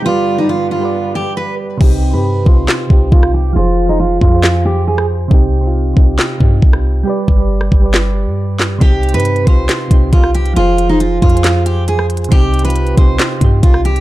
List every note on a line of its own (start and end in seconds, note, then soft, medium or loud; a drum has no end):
0.03 1.79 G2 medium
0.03 1.79 D3 medium
0.03 0.26 G3 loud
0.03 1.79 B3 medium
0.03 0.36 F4 loud
0.03 0.27 G4 medium
0.03 0.28 B4 medium
0.09 0.29 D5 loud
0.35 0.66 G3 medium
0.35 0.47 D#4 medium
0.35 0.67 G4 medium
0.39 0.68 B4 medium
0.39 0.69 D5 medium
0.49 0.66 F4 medium
0.71 1.12 F4 medium
0.79 1.39 G3 medium
0.79 1.40 G4 medium
0.79 1.41 B4 medium
0.85 1.42 D5 medium
1.15 1.32 G4 medium
1.37 1.54 B4 medium
1.78 2.15 C2 loud
1.78 2.01 C3 loud
1.78 2.02 C4 medium
1.78 2.03 D#4 medium
1.78 2.12 G4 loud
1.78 kick loud
1.78 crash medium
1.84 2.04 G4 loud
2.11 2.45 G2 loud
2.11 2.34 C3 medium
2.11 2.35 C4 medium
2.11 2.44 B4 medium
2.15 2.36 D#4 medium
2.15 2.37 G4 medium
2.43 2.67 C2 loud
2.43 2.74 C3 medium
2.43 2.75 C4 medium
2.43 2.76 D#4 medium
2.43 3.08 C5 medium
2.43 kick medium
2.48 2.77 F4 medium
2.68 snare loud
2.68 clap medium
2.87 3.11 C2 loud
2.87 3.33 C3 medium
2.87 3.34 C4 medium
2.87 3.35 D#4 medium
2.87 kick medium
2.93 3.36 G4 medium
3.12 3.54 C2 loud
3.12 3.29 F4 medium
3.12 kick loud
3.23 cross-stick medium
3.34 3.51 G4 medium
3.53 4.19 F1 loud
3.53 3.76 F3 loud
3.53 3.77 F4 medium
3.53 3.87 F4 loud
3.53 3.78 G#4 medium
3.59 3.79 C5 loud
3.86 4.17 F3 medium
3.86 3.97 D#4 medium
3.86 4.18 F4 medium
3.86 4.19 G#4 medium
3.92 4.20 C5 medium
4.00 4.17 F4 medium
4.21 5.27 F2 loud
4.21 4.63 F4 medium
4.21 kick medium
4.30 4.90 F3 medium
4.30 4.91 F4 medium
4.30 4.92 G#4 medium
4.36 4.93 C5 medium
4.43 snare loud
4.43 clap medium
4.65 4.83 G4 medium
4.87 5.05 G#4 medium
4.98 cross-stick medium
5.28 5.94 C2 loud
5.28 5.52 C3 loud
5.28 5.53 C4 medium
5.28 5.54 D#4 medium
5.28 kick loud
5.34 5.55 G4 loud
5.61 5.85 C3 medium
5.61 5.86 C4 medium
5.61 5.87 D#4 medium
5.67 5.88 F4 medium
5.94 6.18 C2 loud
5.94 6.25 C3 medium
5.94 6.26 C4 medium
5.94 kick loud
5.98 6.27 D#4 medium
5.98 6.28 G4 medium
6.19 snare loud
6.19 clap medium
6.38 6.62 G2 loud
6.38 6.83 C3 medium
6.38 6.84 C4 medium
6.38 kick medium
6.42 6.85 D#4 medium
6.42 6.86 G4 medium
6.62 7.04 C2 loud
6.62 kick loud
6.73 cross-stick medium
7.03 7.27 G3 loud
7.03 7.28 G4 medium
7.03 7.29 B4 medium
7.09 7.30 D5 loud
7.28 7.70 G1 loud
7.28 kick medium
7.36 7.67 G3 medium
7.36 7.68 G4 medium
7.36 7.69 B4 medium
7.42 7.70 D5 medium
7.61 cross-stick medium
7.72 8.28 G1 loud
7.72 kick loud
7.80 8.40 G3 medium
7.80 8.41 G4 medium
7.80 8.42 B4 medium
7.86 8.43 D5 medium
7.94 snare loud
7.94 clap medium
8.27 8.79 G2 loud
8.59 snare medium
8.59 clap medium
8.78 9.16 C2 loud
8.78 9.02 C3 medium
8.78 9.03 C4 medium
8.78 9.04 D#4 medium
8.78 9.12 G4 loud
8.78 kick loud
8.78 closed hi-hat medium
8.84 9.05 G4 loud
9.03 closed hi-hat soft
9.09 9.35 C3 medium
9.09 closed hi-hat medium
9.14 9.45 G2 loud
9.14 9.36 C4 medium
9.14 9.37 D#4 medium
9.14 9.45 B4 medium
9.14 closed hi-hat medium
9.18 9.38 G4 medium
9.18 closed hi-hat medium
9.25 closed hi-hat medium
9.36 closed hi-hat soft
9.43 9.68 C2 loud
9.43 9.75 C3 medium
9.43 9.76 C4 medium
9.43 9.77 D#4 medium
9.43 10.09 C5 medium
9.43 kick medium
9.43 closed hi-hat medium
9.49 9.78 F4 medium
9.69 snare loud
9.69 clap medium
9.69 closed hi-hat medium
9.88 10.12 C2 loud
9.88 10.34 C3 medium
9.88 10.35 C4 medium
9.88 10.35 D#4 medium
9.88 kick medium
9.88 closed hi-hat medium
9.94 10.37 G4 medium
10.13 10.55 C2 loud
10.13 10.30 F4 medium
10.13 kick loud
10.13 closed hi-hat medium
10.24 cross-stick medium
10.35 10.52 G4 medium
10.35 closed hi-hat medium
10.46 closed hi-hat soft
10.54 11.20 F1 loud
10.54 10.77 F3 loud
10.54 10.78 F4 medium
10.54 10.87 F4 loud
10.54 closed hi-hat medium
10.58 10.79 G#4 medium
10.58 10.80 C5 loud
10.78 closed hi-hat medium
10.87 11.18 F3 medium
10.87 10.98 D#4 medium
10.87 11.19 F4 medium
10.87 11.20 G#4 medium
10.93 11.21 C5 medium
11.00 11.18 F4 medium
11.00 closed hi-hat medium
11.22 12.28 F2 loud
11.22 11.63 F4 medium
11.22 kick loud
11.22 closed hi-hat soft
11.30 11.91 F3 medium
11.30 11.92 F4 medium
11.30 closed hi-hat medium
11.34 11.93 G#4 medium
11.34 11.94 C5 medium
11.34 closed hi-hat medium
11.44 snare loud
11.44 clap medium
11.44 closed hi-hat medium
11.66 11.83 G4 medium
11.66 closed hi-hat medium
11.88 12.05 G#4 medium
11.88 closed hi-hat medium
11.99 cross-stick medium
12.10 closed hi-hat medium
12.17 closed hi-hat medium
12.24 closed hi-hat medium
12.29 12.95 C2 loud
12.29 12.52 C3 loud
12.29 12.53 C4 medium
12.29 12.54 D#4 medium
12.29 12.63 G4 loud
12.29 kick loud
12.29 closed hi-hat medium
12.35 12.55 G4 loud
12.54 closed hi-hat soft
12.59 12.85 C3 medium
12.59 closed hi-hat medium
12.64 12.86 C4 medium
12.64 12.87 D#4 medium
12.64 12.88 F4 medium
12.64 12.96 B4 medium
12.64 closed hi-hat medium
12.70 closed hi-hat medium
12.76 closed hi-hat medium
12.87 closed hi-hat soft
12.95 13.18 C2 loud
12.95 13.25 C3 medium
12.95 13.26 C4 medium
12.95 13.59 C5 medium
12.95 kick loud
12.95 closed hi-hat medium
12.99 13.27 D#4 medium
12.99 13.28 G4 medium
13.19 snare loud
13.19 clap medium
13.19 closed hi-hat medium
13.39 13.62 G2 loud
13.39 13.84 C3 medium
13.39 13.85 C4 medium
13.39 13.86 D#4 medium
13.39 kick medium
13.39 closed hi-hat medium
13.45 13.87 G4 medium
13.63 14.00 C2 loud
13.63 13.80 F4 medium
13.63 kick loud
13.63 closed hi-hat medium
13.74 cross-stick medium
13.85 14.00 G4 medium
13.85 closed hi-hat medium
13.96 closed hi-hat soft